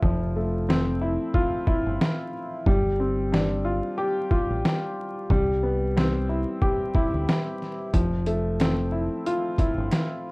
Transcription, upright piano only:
Already playing: C4 E4 F4
0.03 F3
0.36 A3
0.69 C4
1.01 E4
1.34 F4
1.67 E4
2.66 G3
3.00 C4
3.32 D4
3.65 F4
3.98 G4
4.31 F4
5.30 G3
5.63 B3
5.97 C4
6.29 E4
6.62 G4
6.95 E4
7.93 F3
8.27 A3
8.60 C4
8.92 E4
9.26 F4
9.59 E4

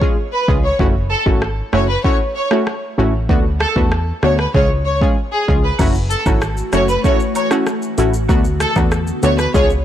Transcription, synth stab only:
0.01 G#3 C#4 F4 G#4
0.48 G#3 C#4 F4 G#4
0.79 A3 C#4 E4 F#4
1.26 A3 C#4 E4 F#4
1.73 A3 C#4 E4 F#4
2.04 A3 C#4 E4 F#4
2.51 A3 C#4 E4 F#4
2.98 A3 C#4 E4 F#4
3.29 A3 B3 D4 F#4
3.76 A3 B3 D4 F#4
4.23 A3 B3 D4 F#4
4.54 G#3 C#4 F4 G#4
5.01 G#3 C#4 F4 G#4
5.48 G#3 C#4 F4 G#4
5.79 A3 C#4 E4 F#4
6.26 A3 C#4 E4 F#4
6.73 A3 C#4 E4 F#4
7.04 A3 C#4 E4 F#4
7.51 A3 C#4 E4 F#4
7.98 A3 C#4 E4 F#4
8.29 A3 B3 D4 F#4
8.76 A3 B3 D4 F#4
9.23 A3 B3 D4 F#4
9.54 G#3 C#4 F4 G#4

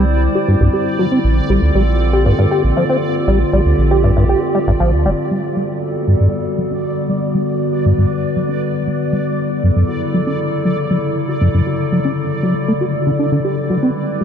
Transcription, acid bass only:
0.35 G4
0.48 G2
0.61 G2
0.73 G4
0.99 F#3
1.12 C4
1.50 G3
1.75 G3
2.13 G4
2.26 G2
2.39 G2
2.51 G4
2.77 F3
2.89 C4
3.28 G3
3.53 G3
3.91 G4
4.04 G2
4.17 G2
4.29 G4
4.55 G3
4.67 G2
4.80 F3
5.06 G3
5.31 G3
5.56 G3
5.95 G4
6.07 G2
6.20 G2
6.33 G4
6.58 F#3
6.71 C#4
7.09 G3
7.34 G3
7.73 G4
7.85 G2
7.98 G2
8.11 G4
8.36 F#3
8.49 C#4
8.87 G3
9.12 G3
9.50 F#4
9.63 F#2
9.76 F#2
9.89 F#4
10.14 F#3
10.27 C#4
10.65 F#3
10.90 F#3
11.28 F#4
11.41 F#2
11.54 F#2
11.67 F#4
11.92 F#3
12.05 C#4
12.43 F#3
12.68 A3
12.81 F#4
13.06 D3
13.19 D4
13.32 D3
13.45 G4
13.70 F#3
13.83 C4
14.21 G3

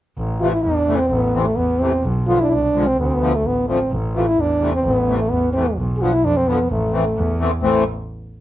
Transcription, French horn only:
0.40 F4
0.52 E4
0.63 D4
0.96 C4
1.07 B3
1.43 A3
1.56 B3
1.80 C4
2.27 F4
2.40 D4 E4
2.46 E4
2.52 D4
2.87 C4
3.00 B3
3.06 C4
3.15 B3
3.36 A3
3.47 B3
3.70 C4
4.17 F4
4.28 E4
4.41 D4
4.74 C4
4.85 B3
5.19 A3
5.30 B3
5.53 C4
5.97 G#4
6.02 F4
6.13 E4
6.25 D4
6.37 C4
6.48 B3
6.72 A3
7.63 A3

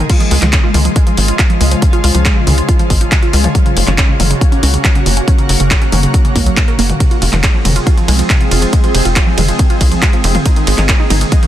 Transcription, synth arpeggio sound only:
0.10 F4
0.20 F3
0.31 G#3
0.42 F3
0.53 C#3
0.64 F4
0.74 F4
0.85 F3
0.96 G#3
1.07 F3
1.17 C#3
1.28 F4
1.39 F4
1.50 F3
1.61 G#3
1.71 F3
1.82 C#3
1.93 F4
2.04 F4
2.15 F3
2.25 G#3
2.36 F3
2.47 C#3
2.58 F4
2.69 F4
2.79 F3
2.90 G#3
3.01 F3
3.12 C#3
3.23 F4
3.33 F4
3.44 F3
3.55 F#3
3.66 C#3
3.77 A#2
3.87 C#4
3.98 C#4
4.09 C#3
4.20 F#3
4.30 C#3
4.41 A#2
4.52 C#4
4.63 C#4
4.74 C#3
4.84 F#3
4.95 C#3
5.06 A#2
5.17 C#4
5.28 C#4
5.39 C#3
5.49 F#3
5.60 C#3
5.71 A#2
5.82 C#4
5.92 C#4
6.03 C#3
6.14 F#3
6.25 C#3
6.36 A#3
6.46 F#3
6.57 A#2
6.68 A#4
6.79 A#3
6.89 A#2
7.00 C3
7.11 F4
7.22 F4
7.33 F3
7.43 G#3
7.54 F3
7.65 C3
7.76 F4
7.87 F4
7.97 F3
8.08 G#3
8.19 F3
8.30 C3
8.41 F4
8.51 F4
8.62 F3
8.73 G#3
8.84 F3
8.95 C3
9.05 F4
9.16 F4
9.27 F3
9.38 G#3
9.48 F3
9.59 C3
9.70 F4
9.81 F4
9.92 F3
10.02 G#3
10.13 F3
10.24 C3
10.35 F4
10.46 D#4
10.56 D#3
10.67 G#3
10.78 D#3
10.89 A#2
11.00 D#4
11.10 D#4
11.21 D#3
11.32 G#3
11.43 D#3

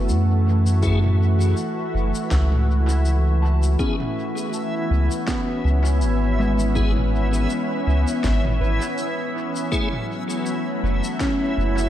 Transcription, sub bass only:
Already playing: F#1
0.09 F#2
1.94 F#1
2.31 C#2
4.91 C#2
5.64 C#2
6.02 G#1
7.87 C#2
8.24 G#1
8.61 G#1
10.83 F#1
11.57 F#1

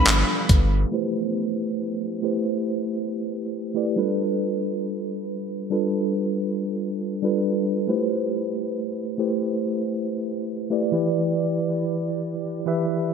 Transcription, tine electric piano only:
Already playing: G3 D4 A4 B4 F5
0.92 A3 E4 G4 B4 C5
2.22 A3 E4 G4 B4 C5
3.74 A3 E4 G4 B4 D5
3.96 G3 D4 F4 A4 B4
5.70 G3 D4 F4 A4 B4
7.22 G3 D4 F4 A4 B4
7.88 A3 E4 G4 B4 C5
9.18 A3 E4 G4 B4 C5
10.70 A3 E4 G4 B4 D5
10.92 E3 E4 G4 B4 D5
12.66 E3 E4 G4 B4 E5

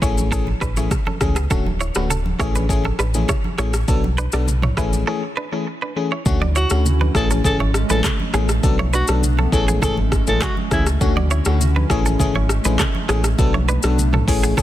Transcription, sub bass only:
0.02 A1
0.62 A1
1.21 C#2
1.51 D1
1.96 D1
2.40 A1
2.99 A1
3.58 A1
3.88 B1
4.33 B1
4.77 A1
6.26 D2
6.71 D2
7.15 A1
7.44 G#1
7.90 A1
8.34 A1
8.63 B1
9.09 B1
9.52 A1
9.82 G#1
10.27 A1
10.71 C#2
11.01 D2
11.46 D2
11.90 A1
12.20 G#1
12.65 A1
13.09 A1
13.39 B1
13.84 B1
14.28 A1
14.57 G#1

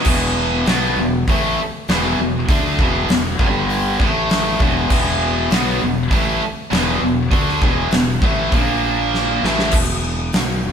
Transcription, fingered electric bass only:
0.06 E1
0.67 B1
0.97 E1
1.28 A1
1.89 E1
2.19 E1
2.49 D2
2.79 E1
3.09 E1
3.39 G1
4.00 A1
4.60 E1
4.90 E1
5.51 B1
5.81 E1
6.11 A1
6.72 E1
7.02 E1
7.31 D2
7.61 E1
7.92 E1
8.22 A1
8.52 A#1
9.43 A1
9.73 E1
10.33 B1
10.64 E1

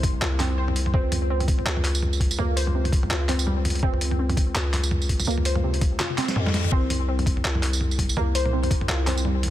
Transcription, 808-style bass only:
Already playing: C2
0.22 C2
0.94 C#2
1.66 C#2
2.38 C#2
3.11 C#2
3.83 C#2
4.55 C#2
5.27 C#2
6.36 F2
6.72 C2
7.45 C2
8.17 C2
8.89 C2

